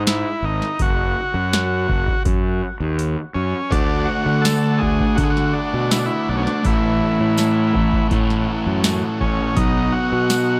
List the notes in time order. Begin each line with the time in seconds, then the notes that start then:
Already playing: G#2
0.07 E4, snare, open hi-hat
0.42 G#1 D#4
0.62 snare
0.79 F#1 F#4, kick, open hi-hat
1.34 F#2
1.53 snare, open hi-hat
1.89 F#1, kick
2.08 kick
2.25 F#2, kick, open hi-hat
2.80 D#2
2.99 open hi-hat
3.34 F#2 C#4
3.70 D2 D3 A3 D4 F#4 D5 F#5, kick, open hi-hat
4.05 F#4
4.26 D3
4.42 A4, snare, open hi-hat, tambourine
4.78 G#4, kick
4.82 D2
5.00 kick
5.15 D3 A3 F#4, kick, open hi-hat
5.21 D4 G#4
5.30 F#4
5.37 snare
5.53 D4
5.74 B2
5.91 E4, snare, open hi-hat, tambourine
5.99 D4
6.06 E4
6.29 B1 D4
6.37 C#4
6.43 D4, snare
6.64 A1 A2 E3 A3 E4 A4 C#5, kick, open hi-hat
7.20 A2
7.37 snare, open hi-hat, tambourine
7.75 A1, kick
7.93 kick
8.10 A2 E3 A3, kick, open hi-hat
8.30 snare
8.66 F#2
8.84 snare, open hi-hat, tambourine
9.21 A1 C#4, kick
9.56 B1 B2 F#3 B3 D#4 D#5, kick, open hi-hat
9.60 F#4
9.92 F#4
10.12 B2
10.30 snare, open hi-hat, tambourine